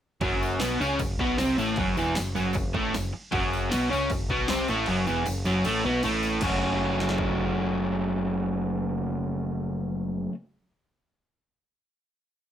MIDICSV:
0, 0, Header, 1, 6, 480
1, 0, Start_track
1, 0, Key_signature, 3, "minor"
1, 0, Tempo, 389610
1, 271, Time_signature, 4, 2, 24, 8
1, 4590, Tempo, 384615
1, 15564, End_track
2, 0, Start_track
2, 0, Title_t, "Overdriven electric guitar"
2, 0, Program_c, 0, 29
2, 261, Note_on_c, 0, 42, 94
2, 277, Note_on_c, 0, 54, 111
2, 734, Note_on_c, 0, 47, 83
2, 741, Note_off_c, 0, 42, 0
2, 743, Note_on_c, 0, 59, 96
2, 749, Note_off_c, 0, 54, 0
2, 977, Note_off_c, 0, 47, 0
2, 982, Note_off_c, 0, 59, 0
2, 982, Note_on_c, 0, 49, 96
2, 998, Note_on_c, 0, 61, 102
2, 1222, Note_off_c, 0, 49, 0
2, 1226, Note_on_c, 0, 42, 66
2, 1230, Note_off_c, 0, 61, 0
2, 1424, Note_off_c, 0, 42, 0
2, 1473, Note_on_c, 0, 47, 76
2, 1484, Note_on_c, 0, 59, 95
2, 1692, Note_off_c, 0, 47, 0
2, 1697, Note_on_c, 0, 48, 85
2, 1703, Note_off_c, 0, 59, 0
2, 1708, Note_on_c, 0, 60, 107
2, 1936, Note_off_c, 0, 48, 0
2, 1941, Note_on_c, 0, 45, 88
2, 1946, Note_off_c, 0, 60, 0
2, 1958, Note_on_c, 0, 57, 100
2, 2182, Note_off_c, 0, 45, 0
2, 2183, Note_on_c, 0, 42, 88
2, 2190, Note_on_c, 0, 54, 96
2, 2191, Note_off_c, 0, 57, 0
2, 2421, Note_off_c, 0, 42, 0
2, 2426, Note_on_c, 0, 40, 89
2, 2427, Note_off_c, 0, 54, 0
2, 2439, Note_on_c, 0, 52, 112
2, 2659, Note_off_c, 0, 40, 0
2, 2664, Note_on_c, 0, 42, 72
2, 2671, Note_off_c, 0, 52, 0
2, 2863, Note_off_c, 0, 42, 0
2, 2900, Note_on_c, 0, 42, 92
2, 2906, Note_on_c, 0, 54, 101
2, 3130, Note_off_c, 0, 42, 0
2, 3144, Note_off_c, 0, 54, 0
2, 3145, Note_on_c, 0, 42, 73
2, 3343, Note_off_c, 0, 42, 0
2, 3371, Note_on_c, 0, 45, 80
2, 3381, Note_on_c, 0, 57, 97
2, 3616, Note_off_c, 0, 45, 0
2, 3621, Note_off_c, 0, 57, 0
2, 3622, Note_on_c, 0, 42, 73
2, 3820, Note_off_c, 0, 42, 0
2, 4081, Note_on_c, 0, 42, 95
2, 4091, Note_on_c, 0, 54, 106
2, 4550, Note_on_c, 0, 47, 95
2, 4566, Note_off_c, 0, 42, 0
2, 4566, Note_on_c, 0, 59, 88
2, 4571, Note_off_c, 0, 54, 0
2, 4797, Note_off_c, 0, 47, 0
2, 4802, Note_on_c, 0, 49, 97
2, 4809, Note_off_c, 0, 59, 0
2, 4814, Note_on_c, 0, 61, 99
2, 5049, Note_off_c, 0, 49, 0
2, 5055, Note_off_c, 0, 61, 0
2, 5055, Note_on_c, 0, 42, 76
2, 5255, Note_off_c, 0, 42, 0
2, 5307, Note_on_c, 0, 47, 90
2, 5315, Note_on_c, 0, 59, 93
2, 5542, Note_off_c, 0, 47, 0
2, 5546, Note_off_c, 0, 59, 0
2, 5547, Note_on_c, 0, 48, 91
2, 5560, Note_on_c, 0, 60, 107
2, 5782, Note_off_c, 0, 48, 0
2, 5788, Note_off_c, 0, 60, 0
2, 5789, Note_on_c, 0, 45, 94
2, 5804, Note_on_c, 0, 57, 105
2, 6017, Note_on_c, 0, 42, 96
2, 6023, Note_off_c, 0, 45, 0
2, 6030, Note_off_c, 0, 57, 0
2, 6031, Note_on_c, 0, 54, 117
2, 6256, Note_off_c, 0, 42, 0
2, 6261, Note_on_c, 0, 40, 94
2, 6262, Note_off_c, 0, 54, 0
2, 6267, Note_on_c, 0, 52, 112
2, 6498, Note_off_c, 0, 40, 0
2, 6501, Note_off_c, 0, 52, 0
2, 6503, Note_on_c, 0, 42, 69
2, 6698, Note_off_c, 0, 42, 0
2, 6747, Note_on_c, 0, 42, 88
2, 6755, Note_on_c, 0, 54, 118
2, 6980, Note_off_c, 0, 42, 0
2, 6984, Note_off_c, 0, 54, 0
2, 6989, Note_on_c, 0, 45, 92
2, 6996, Note_on_c, 0, 57, 110
2, 7220, Note_off_c, 0, 45, 0
2, 7224, Note_off_c, 0, 57, 0
2, 7238, Note_on_c, 0, 47, 87
2, 7245, Note_on_c, 0, 59, 92
2, 7464, Note_off_c, 0, 47, 0
2, 7468, Note_off_c, 0, 59, 0
2, 7475, Note_on_c, 0, 45, 85
2, 7480, Note_on_c, 0, 57, 108
2, 7941, Note_off_c, 0, 45, 0
2, 7943, Note_off_c, 0, 57, 0
2, 7948, Note_on_c, 0, 42, 94
2, 7966, Note_on_c, 0, 49, 106
2, 7969, Note_on_c, 0, 54, 102
2, 7990, Note_on_c, 0, 57, 101
2, 7991, Note_on_c, 0, 61, 109
2, 7997, Note_on_c, 0, 66, 115
2, 12801, Note_off_c, 0, 42, 0
2, 12820, Note_off_c, 0, 49, 0
2, 12822, Note_off_c, 0, 54, 0
2, 12843, Note_off_c, 0, 57, 0
2, 12845, Note_off_c, 0, 61, 0
2, 12850, Note_off_c, 0, 66, 0
2, 15564, End_track
3, 0, Start_track
3, 0, Title_t, "Picked electric bass"
3, 0, Program_c, 1, 34
3, 255, Note_on_c, 1, 30, 82
3, 711, Note_off_c, 1, 30, 0
3, 760, Note_on_c, 1, 35, 86
3, 981, Note_off_c, 1, 35, 0
3, 990, Note_on_c, 1, 37, 95
3, 1210, Note_off_c, 1, 37, 0
3, 1218, Note_on_c, 1, 30, 81
3, 1450, Note_off_c, 1, 30, 0
3, 1458, Note_on_c, 1, 35, 79
3, 1691, Note_off_c, 1, 35, 0
3, 1699, Note_on_c, 1, 36, 96
3, 1931, Note_off_c, 1, 36, 0
3, 1948, Note_on_c, 1, 33, 102
3, 2176, Note_off_c, 1, 33, 0
3, 2185, Note_on_c, 1, 30, 95
3, 2415, Note_off_c, 1, 30, 0
3, 2432, Note_on_c, 1, 28, 95
3, 2658, Note_off_c, 1, 28, 0
3, 2693, Note_on_c, 1, 30, 73
3, 2909, Note_off_c, 1, 30, 0
3, 2936, Note_on_c, 1, 30, 91
3, 3140, Note_off_c, 1, 30, 0
3, 3148, Note_on_c, 1, 30, 80
3, 3371, Note_off_c, 1, 30, 0
3, 3379, Note_on_c, 1, 33, 96
3, 3609, Note_off_c, 1, 33, 0
3, 3659, Note_on_c, 1, 30, 74
3, 3870, Note_off_c, 1, 30, 0
3, 4106, Note_on_c, 1, 30, 91
3, 4552, Note_off_c, 1, 30, 0
3, 4605, Note_on_c, 1, 35, 93
3, 4822, Note_off_c, 1, 35, 0
3, 4845, Note_on_c, 1, 37, 95
3, 5048, Note_off_c, 1, 37, 0
3, 5056, Note_on_c, 1, 30, 77
3, 5286, Note_off_c, 1, 30, 0
3, 5297, Note_on_c, 1, 35, 88
3, 5527, Note_off_c, 1, 35, 0
3, 5555, Note_on_c, 1, 36, 94
3, 5776, Note_off_c, 1, 36, 0
3, 5802, Note_on_c, 1, 33, 105
3, 6015, Note_off_c, 1, 33, 0
3, 6022, Note_on_c, 1, 30, 97
3, 6249, Note_off_c, 1, 30, 0
3, 6287, Note_on_c, 1, 28, 96
3, 6502, Note_off_c, 1, 28, 0
3, 6528, Note_on_c, 1, 30, 75
3, 6742, Note_off_c, 1, 30, 0
3, 6759, Note_on_c, 1, 30, 94
3, 6977, Note_off_c, 1, 30, 0
3, 6998, Note_on_c, 1, 33, 89
3, 7215, Note_off_c, 1, 33, 0
3, 7242, Note_on_c, 1, 35, 86
3, 7457, Note_off_c, 1, 35, 0
3, 7482, Note_on_c, 1, 33, 98
3, 7919, Note_off_c, 1, 33, 0
3, 7945, Note_on_c, 1, 30, 81
3, 12748, Note_off_c, 1, 30, 0
3, 15564, End_track
4, 0, Start_track
4, 0, Title_t, "Muted overdriven electric guitar strokes"
4, 3859, Note_on_c, 9, 29, 68
4, 3983, Note_off_c, 9, 29, 0
4, 15564, End_track
5, 0, Start_track
5, 0, Title_t, "Muted picked electric bass strokes"
5, 3882, Note_on_c, 9, 29, 45
5, 4005, Note_off_c, 9, 29, 0
5, 15564, End_track
6, 0, Start_track
6, 0, Title_t, "Drums"
6, 257, Note_on_c, 9, 49, 54
6, 263, Note_on_c, 9, 36, 105
6, 267, Note_on_c, 9, 54, 30
6, 381, Note_off_c, 9, 49, 0
6, 386, Note_off_c, 9, 36, 0
6, 390, Note_off_c, 9, 54, 0
6, 524, Note_on_c, 9, 54, 74
6, 647, Note_off_c, 9, 54, 0
6, 734, Note_on_c, 9, 49, 59
6, 736, Note_on_c, 9, 38, 107
6, 757, Note_on_c, 9, 54, 124
6, 857, Note_off_c, 9, 49, 0
6, 860, Note_off_c, 9, 38, 0
6, 881, Note_off_c, 9, 54, 0
6, 1002, Note_on_c, 9, 54, 74
6, 1125, Note_off_c, 9, 54, 0
6, 1224, Note_on_c, 9, 49, 64
6, 1224, Note_on_c, 9, 54, 90
6, 1228, Note_on_c, 9, 36, 110
6, 1347, Note_off_c, 9, 54, 0
6, 1348, Note_off_c, 9, 49, 0
6, 1351, Note_off_c, 9, 36, 0
6, 1468, Note_on_c, 9, 36, 85
6, 1591, Note_off_c, 9, 36, 0
6, 1703, Note_on_c, 9, 49, 65
6, 1706, Note_on_c, 9, 38, 109
6, 1722, Note_on_c, 9, 54, 94
6, 1826, Note_off_c, 9, 49, 0
6, 1829, Note_off_c, 9, 38, 0
6, 1845, Note_off_c, 9, 54, 0
6, 1952, Note_on_c, 9, 54, 82
6, 2075, Note_off_c, 9, 54, 0
6, 2168, Note_on_c, 9, 49, 56
6, 2185, Note_on_c, 9, 36, 111
6, 2185, Note_on_c, 9, 54, 32
6, 2292, Note_off_c, 9, 49, 0
6, 2308, Note_off_c, 9, 36, 0
6, 2308, Note_off_c, 9, 54, 0
6, 2428, Note_on_c, 9, 54, 72
6, 2551, Note_off_c, 9, 54, 0
6, 2651, Note_on_c, 9, 49, 57
6, 2653, Note_on_c, 9, 38, 105
6, 2666, Note_on_c, 9, 54, 110
6, 2774, Note_off_c, 9, 49, 0
6, 2776, Note_off_c, 9, 38, 0
6, 2789, Note_off_c, 9, 54, 0
6, 2907, Note_on_c, 9, 54, 68
6, 3030, Note_off_c, 9, 54, 0
6, 3119, Note_on_c, 9, 54, 90
6, 3134, Note_on_c, 9, 49, 53
6, 3143, Note_on_c, 9, 36, 112
6, 3242, Note_off_c, 9, 54, 0
6, 3257, Note_off_c, 9, 49, 0
6, 3266, Note_off_c, 9, 36, 0
6, 3382, Note_on_c, 9, 36, 93
6, 3505, Note_off_c, 9, 36, 0
6, 3625, Note_on_c, 9, 49, 57
6, 3628, Note_on_c, 9, 38, 116
6, 3630, Note_on_c, 9, 54, 95
6, 3748, Note_off_c, 9, 49, 0
6, 3751, Note_off_c, 9, 38, 0
6, 3753, Note_off_c, 9, 54, 0
6, 4090, Note_on_c, 9, 49, 56
6, 4101, Note_on_c, 9, 36, 110
6, 4118, Note_on_c, 9, 54, 30
6, 4213, Note_off_c, 9, 49, 0
6, 4224, Note_off_c, 9, 36, 0
6, 4242, Note_off_c, 9, 54, 0
6, 4352, Note_on_c, 9, 54, 69
6, 4475, Note_off_c, 9, 54, 0
6, 4578, Note_on_c, 9, 49, 62
6, 4580, Note_on_c, 9, 38, 114
6, 4585, Note_on_c, 9, 54, 105
6, 4702, Note_off_c, 9, 49, 0
6, 4705, Note_off_c, 9, 38, 0
6, 4710, Note_off_c, 9, 54, 0
6, 4841, Note_on_c, 9, 54, 72
6, 4966, Note_off_c, 9, 54, 0
6, 5053, Note_on_c, 9, 49, 68
6, 5064, Note_on_c, 9, 36, 113
6, 5074, Note_on_c, 9, 54, 76
6, 5178, Note_off_c, 9, 49, 0
6, 5189, Note_off_c, 9, 36, 0
6, 5199, Note_off_c, 9, 54, 0
6, 5304, Note_on_c, 9, 36, 81
6, 5428, Note_off_c, 9, 36, 0
6, 5531, Note_on_c, 9, 49, 65
6, 5534, Note_on_c, 9, 38, 120
6, 5556, Note_on_c, 9, 54, 88
6, 5656, Note_off_c, 9, 49, 0
6, 5658, Note_off_c, 9, 38, 0
6, 5680, Note_off_c, 9, 54, 0
6, 5785, Note_on_c, 9, 54, 76
6, 5910, Note_off_c, 9, 54, 0
6, 6006, Note_on_c, 9, 49, 60
6, 6030, Note_on_c, 9, 54, 32
6, 6130, Note_off_c, 9, 49, 0
6, 6155, Note_off_c, 9, 54, 0
6, 6266, Note_on_c, 9, 54, 68
6, 6391, Note_off_c, 9, 54, 0
6, 6501, Note_on_c, 9, 49, 59
6, 6510, Note_on_c, 9, 54, 111
6, 6626, Note_off_c, 9, 49, 0
6, 6635, Note_off_c, 9, 54, 0
6, 6742, Note_on_c, 9, 54, 71
6, 6867, Note_off_c, 9, 54, 0
6, 6984, Note_on_c, 9, 54, 85
6, 6990, Note_on_c, 9, 49, 60
6, 7109, Note_off_c, 9, 54, 0
6, 7115, Note_off_c, 9, 49, 0
6, 7227, Note_on_c, 9, 54, 30
6, 7352, Note_off_c, 9, 54, 0
6, 7464, Note_on_c, 9, 49, 65
6, 7468, Note_on_c, 9, 54, 80
6, 7589, Note_off_c, 9, 49, 0
6, 7593, Note_off_c, 9, 54, 0
6, 7713, Note_on_c, 9, 54, 72
6, 7837, Note_off_c, 9, 54, 0
6, 7938, Note_on_c, 9, 57, 87
6, 7948, Note_on_c, 9, 36, 105
6, 7955, Note_on_c, 9, 54, 81
6, 8063, Note_off_c, 9, 57, 0
6, 8073, Note_off_c, 9, 36, 0
6, 8080, Note_off_c, 9, 54, 0
6, 8680, Note_on_c, 9, 38, 64
6, 8788, Note_off_c, 9, 38, 0
6, 8788, Note_on_c, 9, 38, 74
6, 8906, Note_on_c, 9, 36, 92
6, 8913, Note_off_c, 9, 38, 0
6, 9030, Note_off_c, 9, 36, 0
6, 15564, End_track
0, 0, End_of_file